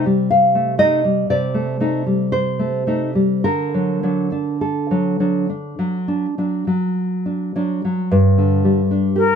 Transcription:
0.00 1.24 C3 medium
0.00 0.25 G5 medium
0.06 0.83 G3 soft
0.30 0.77 F5 medium
0.55 0.77 A3 soft
0.78 1.01 A3 soft
0.78 1.01 D#4 soft
0.78 1.27 D#5 medium
1.04 1.44 G3 soft
1.30 3.41 C3 soft
1.30 2.29 D5 medium
1.54 1.79 A3 soft
1.80 2.04 A3 soft
1.80 2.04 D#4 soft
2.06 2.87 G3 soft
2.32 3.40 C5 medium
2.59 2.86 A3 soft
2.87 3.12 A3 soft
2.87 3.13 D#4 soft
3.15 3.44 G3 soft
3.44 5.75 D3 soft
3.44 4.58 A#4 medium
3.74 4.02 F#3 soft
4.03 4.30 F#3 soft
4.03 4.30 D4 soft
4.32 5.19 D4 soft
4.61 7.50 A4 soft
4.91 5.19 F#3 soft
5.20 5.47 F#3 soft
5.20 5.47 D4 soft
5.50 5.96 D4 soft
5.79 6.25 F#3 soft
6.08 6.37 D4 soft
6.38 6.64 F#3 soft
6.38 6.64 D4 soft
6.67 7.54 F#3 soft
7.26 7.55 D4 soft
7.56 7.81 F#3 soft
7.56 7.81 D4 soft
7.85 8.11 F#3 soft
8.11 9.35 G2 medium
8.38 8.80 D3 soft
8.65 9.06 G3 soft
8.91 9.32 D4 soft
9.16 9.35 G4 soft
9.16 9.35 A#4 medium

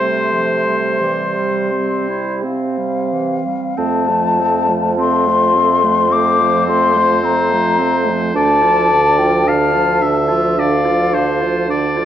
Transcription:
0.00 3.39 C3 medium
0.00 0.34 G3 medium
0.00 1.02 A3 medium
0.00 2.40 C5 medium
0.00 2.15 C6 medium
0.32 0.67 F3 medium
0.66 1.00 G3 medium
1.00 1.37 E3 medium
1.00 2.46 G3 medium
1.35 1.72 G3 medium
1.71 2.10 C4 medium
2.09 2.45 E4 medium
2.43 2.79 C4 medium
2.43 3.77 C4 medium
2.43 3.79 F5 medium
2.78 3.14 G3 medium
3.12 3.47 E3 medium
3.46 3.76 G3 medium
3.77 8.33 F2 medium
3.77 4.11 A3 medium
3.77 4.09 C4 medium
3.77 4.99 A5 loud
4.08 4.42 F3 medium
4.08 4.40 A3 medium
4.39 4.72 A3 medium
4.39 4.70 C4 medium
4.68 4.99 F3 medium
4.68 4.97 A3 medium
4.97 5.29 A3 medium
4.97 5.29 C4 medium
4.97 6.14 C6 loud
5.27 5.59 F3 medium
5.27 5.56 A3 medium
5.54 5.86 A3 medium
5.54 5.84 C4 medium
5.83 6.12 F3 medium
5.83 6.09 A3 medium
6.09 6.40 C4 medium
6.09 8.32 C5 loud
6.09 6.68 D6 loud
6.13 6.43 A3 medium
6.39 6.71 F3 medium
6.39 6.67 A3 medium
6.66 6.99 A3 medium
6.66 6.95 C4 medium
6.66 7.27 C6 loud
6.93 7.22 A3 medium
6.98 7.26 F3 medium
7.22 7.55 A3 medium
7.22 7.53 C4 medium
7.22 8.10 A#5 loud
7.51 7.83 F3 medium
7.51 7.80 A3 medium
7.78 8.11 A3 medium
7.78 8.07 C4 medium
8.05 8.36 F3 medium
8.05 8.33 A3 medium
8.34 12.05 D2 medium
8.34 8.67 D3 medium
8.34 8.63 D4 medium
8.34 9.49 D5 loud
8.34 9.20 A5 loud
8.62 8.94 F3 medium
8.62 8.90 F4 medium
8.89 9.21 D3 medium
8.89 9.19 D4 medium
9.18 9.46 F3 medium
9.18 9.45 F4 medium
9.18 9.49 G5 loud
9.45 9.76 D3 medium
9.45 9.73 D4 medium
9.45 10.03 F5 medium
9.45 10.32 A5 loud
9.72 10.05 F3 medium
9.72 10.03 F4 medium
10.01 10.33 D3 medium
10.01 10.29 D4 medium
10.01 10.60 E5 loud
10.28 10.59 F3 medium
10.28 10.56 F4 medium
10.57 10.90 D3 medium
10.57 10.86 D4 medium
10.57 11.15 D5 loud
10.57 11.66 F5 loud
10.85 11.18 F3 medium
10.85 11.14 F4 medium
11.13 11.45 D3 medium
11.13 11.42 D4 medium
11.13 11.69 C5 loud
11.41 11.70 F3 medium
11.41 11.68 F4 medium
11.68 12.01 D3 medium
11.68 11.98 D4 medium
11.68 12.05 D5 loud
11.97 12.05 F3 medium
11.97 12.05 F4 medium

